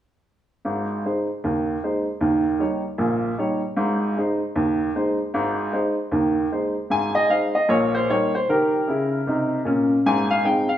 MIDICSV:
0, 0, Header, 1, 2, 480
1, 0, Start_track
1, 0, Key_signature, -4, "major"
1, 0, Tempo, 391901
1, 778, Time_signature, 4, 2, 24, 8
1, 13202, End_track
2, 0, Start_track
2, 0, Title_t, "Upright piano"
2, 0, Program_c, 0, 0
2, 794, Note_on_c, 0, 44, 50
2, 798, Note_on_c, 0, 32, 49
2, 999, Control_c, 0, 64, 127
2, 1195, Note_off_c, 0, 44, 0
2, 1197, Note_off_c, 0, 32, 0
2, 1275, Control_c, 0, 64, 0
2, 1279, Note_on_c, 0, 56, 31
2, 1288, Note_on_c, 0, 63, 30
2, 1297, Note_on_c, 0, 72, 38
2, 1537, Note_off_c, 0, 56, 0
2, 1544, Note_off_c, 0, 63, 0
2, 1550, Note_off_c, 0, 72, 0
2, 1762, Note_on_c, 0, 51, 52
2, 1765, Note_on_c, 0, 39, 49
2, 2160, Note_off_c, 0, 51, 0
2, 2161, Note_off_c, 0, 39, 0
2, 2246, Note_on_c, 0, 56, 34
2, 2250, Note_on_c, 0, 63, 32
2, 2252, Note_on_c, 0, 72, 35
2, 2502, Note_off_c, 0, 56, 0
2, 2506, Note_off_c, 0, 63, 0
2, 2507, Note_off_c, 0, 72, 0
2, 2703, Note_on_c, 0, 39, 48
2, 2708, Note_on_c, 0, 51, 57
2, 2930, Control_c, 0, 64, 127
2, 3109, Note_off_c, 0, 39, 0
2, 3112, Note_off_c, 0, 51, 0
2, 3178, Note_on_c, 0, 55, 34
2, 3185, Note_on_c, 0, 63, 33
2, 3189, Note_on_c, 0, 73, 36
2, 3194, Control_c, 0, 64, 0
2, 3442, Note_off_c, 0, 55, 0
2, 3447, Note_off_c, 0, 63, 0
2, 3451, Note_off_c, 0, 73, 0
2, 3651, Note_on_c, 0, 46, 52
2, 3657, Note_on_c, 0, 34, 56
2, 4063, Note_off_c, 0, 46, 0
2, 4066, Note_off_c, 0, 34, 0
2, 4143, Note_on_c, 0, 55, 37
2, 4146, Note_on_c, 0, 63, 39
2, 4157, Note_on_c, 0, 73, 40
2, 4406, Note_off_c, 0, 55, 0
2, 4408, Note_off_c, 0, 63, 0
2, 4416, Note_off_c, 0, 73, 0
2, 4612, Note_on_c, 0, 32, 54
2, 4612, Note_on_c, 0, 44, 68
2, 4866, Control_c, 0, 64, 127
2, 5023, Note_off_c, 0, 32, 0
2, 5024, Note_off_c, 0, 44, 0
2, 5105, Note_on_c, 0, 56, 41
2, 5109, Control_c, 0, 64, 0
2, 5115, Note_on_c, 0, 63, 41
2, 5123, Note_on_c, 0, 72, 40
2, 5368, Note_off_c, 0, 56, 0
2, 5375, Note_off_c, 0, 63, 0
2, 5381, Note_off_c, 0, 72, 0
2, 5580, Note_on_c, 0, 39, 59
2, 5585, Note_on_c, 0, 51, 54
2, 5989, Note_off_c, 0, 39, 0
2, 5991, Note_off_c, 0, 51, 0
2, 6062, Note_on_c, 0, 56, 43
2, 6076, Note_on_c, 0, 63, 40
2, 6076, Note_on_c, 0, 72, 45
2, 6326, Note_off_c, 0, 56, 0
2, 6336, Note_off_c, 0, 63, 0
2, 6336, Note_off_c, 0, 72, 0
2, 6540, Note_on_c, 0, 32, 62
2, 6543, Note_on_c, 0, 44, 69
2, 6788, Control_c, 0, 64, 127
2, 6949, Note_off_c, 0, 32, 0
2, 6951, Note_off_c, 0, 44, 0
2, 7015, Note_on_c, 0, 56, 37
2, 7018, Note_on_c, 0, 63, 41
2, 7022, Note_on_c, 0, 72, 41
2, 7030, Control_c, 0, 64, 0
2, 7281, Note_off_c, 0, 56, 0
2, 7283, Note_off_c, 0, 63, 0
2, 7286, Note_off_c, 0, 72, 0
2, 7490, Note_on_c, 0, 39, 58
2, 7496, Note_on_c, 0, 51, 57
2, 7904, Note_off_c, 0, 39, 0
2, 7907, Note_off_c, 0, 51, 0
2, 7985, Note_on_c, 0, 56, 37
2, 7989, Note_on_c, 0, 63, 34
2, 7992, Note_on_c, 0, 72, 41
2, 8248, Note_off_c, 0, 56, 0
2, 8251, Note_off_c, 0, 63, 0
2, 8254, Note_off_c, 0, 72, 0
2, 8453, Note_on_c, 0, 32, 45
2, 8457, Note_on_c, 0, 44, 57
2, 8469, Note_on_c, 0, 80, 74
2, 8702, Control_c, 0, 64, 127
2, 8757, Note_on_c, 0, 75, 74
2, 8763, Note_off_c, 0, 80, 0
2, 8865, Note_off_c, 0, 32, 0
2, 8867, Note_off_c, 0, 44, 0
2, 8930, Note_on_c, 0, 56, 37
2, 8937, Note_on_c, 0, 63, 31
2, 8941, Note_off_c, 0, 75, 0
2, 8941, Note_on_c, 0, 72, 37
2, 8943, Note_on_c, 0, 77, 67
2, 8957, Control_c, 0, 64, 0
2, 9198, Note_off_c, 0, 56, 0
2, 9202, Note_off_c, 0, 63, 0
2, 9206, Note_off_c, 0, 72, 0
2, 9240, Note_off_c, 0, 77, 0
2, 9247, Note_on_c, 0, 75, 68
2, 9415, Note_on_c, 0, 46, 61
2, 9416, Note_on_c, 0, 34, 56
2, 9426, Note_off_c, 0, 75, 0
2, 9427, Note_on_c, 0, 73, 73
2, 9660, Control_c, 0, 64, 127
2, 9722, Note_off_c, 0, 73, 0
2, 9732, Note_on_c, 0, 72, 74
2, 9827, Note_off_c, 0, 34, 0
2, 9827, Note_off_c, 0, 46, 0
2, 9909, Note_off_c, 0, 72, 0
2, 9914, Note_on_c, 0, 55, 34
2, 9914, Note_on_c, 0, 63, 38
2, 9917, Note_on_c, 0, 70, 36
2, 9918, Control_c, 0, 64, 0
2, 9925, Note_on_c, 0, 73, 76
2, 10175, Note_off_c, 0, 55, 0
2, 10175, Note_off_c, 0, 63, 0
2, 10177, Note_off_c, 0, 70, 0
2, 10211, Note_off_c, 0, 73, 0
2, 10225, Note_on_c, 0, 72, 68
2, 10395, Note_on_c, 0, 51, 48
2, 10396, Note_off_c, 0, 72, 0
2, 10406, Note_on_c, 0, 70, 63
2, 10422, Note_on_c, 0, 67, 55
2, 10614, Control_c, 0, 64, 127
2, 10774, Note_off_c, 0, 51, 0
2, 10790, Note_off_c, 0, 67, 0
2, 10872, Note_on_c, 0, 49, 55
2, 10881, Control_c, 0, 64, 0
2, 10888, Note_on_c, 0, 64, 49
2, 11252, Note_off_c, 0, 49, 0
2, 11262, Note_off_c, 0, 64, 0
2, 11354, Note_on_c, 0, 48, 50
2, 11371, Note_on_c, 0, 63, 51
2, 11733, Note_off_c, 0, 48, 0
2, 11743, Note_off_c, 0, 63, 0
2, 11821, Note_on_c, 0, 46, 52
2, 11839, Note_on_c, 0, 61, 56
2, 12131, Note_off_c, 0, 70, 0
2, 12205, Note_off_c, 0, 46, 0
2, 12216, Note_off_c, 0, 61, 0
2, 12322, Note_on_c, 0, 44, 65
2, 12323, Note_on_c, 0, 32, 55
2, 12326, Note_on_c, 0, 80, 79
2, 12536, Control_c, 0, 64, 127
2, 12611, Note_off_c, 0, 80, 0
2, 12623, Note_on_c, 0, 77, 82
2, 12721, Note_off_c, 0, 44, 0
2, 12722, Note_off_c, 0, 32, 0
2, 12794, Note_off_c, 0, 77, 0
2, 12795, Note_on_c, 0, 56, 44
2, 12796, Note_on_c, 0, 60, 42
2, 12798, Control_c, 0, 64, 0
2, 12798, Note_on_c, 0, 63, 39
2, 12805, Note_on_c, 0, 79, 68
2, 13055, Note_off_c, 0, 56, 0
2, 13056, Note_off_c, 0, 60, 0
2, 13058, Note_off_c, 0, 63, 0
2, 13090, Note_off_c, 0, 79, 0
2, 13092, Note_on_c, 0, 77, 73
2, 13202, Note_off_c, 0, 77, 0
2, 13202, End_track
0, 0, End_of_file